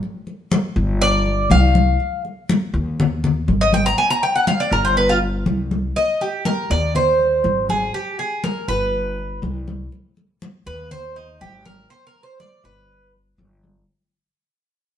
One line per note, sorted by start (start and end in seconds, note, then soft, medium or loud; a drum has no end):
0.03 high conga soft
0.27 high conga soft
0.52 high conga medium
0.76 1.47 G1 loud
0.76 high conga soft
1.01 1.48 D5 loud
1.01 high conga soft
1.26 high conga soft
1.50 1.94 C2 medium
1.50 2.21 F5 medium
1.50 high conga loud
1.75 high conga medium
2.00 high conga soft
2.25 high conga soft
2.49 high conga medium
2.74 3.44 D#2 loud
2.74 high conga soft
3.00 high conga soft
3.00 low conga medium
3.24 high conga soft
3.24 low conga medium
3.48 3.92 G#1 medium
3.48 high conga medium
3.61 3.73 D#5 loud
3.73 3.86 G5 loud
3.73 high conga medium
3.86 3.98 A#5 loud
3.98 4.10 G#5 medium
3.98 high conga soft
4.10 4.22 A#5 loud
4.23 4.35 G5 medium
4.23 high conga soft
4.36 4.47 F#5 medium
4.47 4.60 F5 medium
4.47 high conga loud
4.60 4.72 D5 medium
4.72 5.42 G1 loud
4.72 4.84 A#4 medium
4.72 high conga soft
4.85 4.97 C5 medium
4.97 5.09 B4 medium
4.97 high conga soft
5.09 5.17 F4 medium
5.22 high conga soft
5.46 5.90 C2 medium
5.46 high conga medium
5.71 high conga medium
5.96 6.20 D#5 medium
5.96 high conga soft
6.21 6.45 G4 medium
6.21 high conga soft
6.45 6.70 A#4 medium
6.45 high conga loud
6.70 7.41 D#2 loud
6.70 6.95 D5 loud
6.70 high conga soft
6.95 7.66 C5 medium
6.95 high conga soft
6.95 low conga medium
7.20 high conga soft
7.44 7.88 G#1 medium
7.44 high conga medium
7.69 7.94 G#4 medium
7.69 high conga medium
7.94 8.18 G4 medium
7.94 high conga soft
8.19 8.43 G#4 medium
8.19 high conga soft
8.44 8.68 A#4 medium
8.44 high conga loud
8.68 9.39 G1 loud
8.68 9.39 B4 loud
8.68 high conga soft
8.93 high conga soft
9.18 high conga soft
9.42 9.86 C2 medium
9.42 high conga medium
9.68 high conga medium
9.92 high conga soft
10.17 high conga soft
10.42 high conga medium
10.66 11.37 D#2 loud
10.66 10.91 B4 loud
10.66 high conga soft
10.91 11.15 C5 loud
10.91 high conga soft
10.91 low conga medium
11.16 11.40 D#4 medium
11.16 high conga soft
11.41 11.85 G#1 loud
11.41 11.65 G4 medium
11.41 high conga medium
11.65 11.90 A#4 loud
11.65 high conga medium
11.90 12.06 C5 loud
11.90 high conga soft
12.07 12.23 A#4 medium
12.16 high conga soft
12.23 12.39 C5 medium
12.40 12.64 D5 loud
12.40 high conga loud
12.64 13.35 G1 loud
12.64 13.11 B4 medium
12.64 high conga soft
12.90 high conga soft
13.15 high conga soft
13.38 13.82 G1 loud
13.38 high conga loud
13.64 high conga medium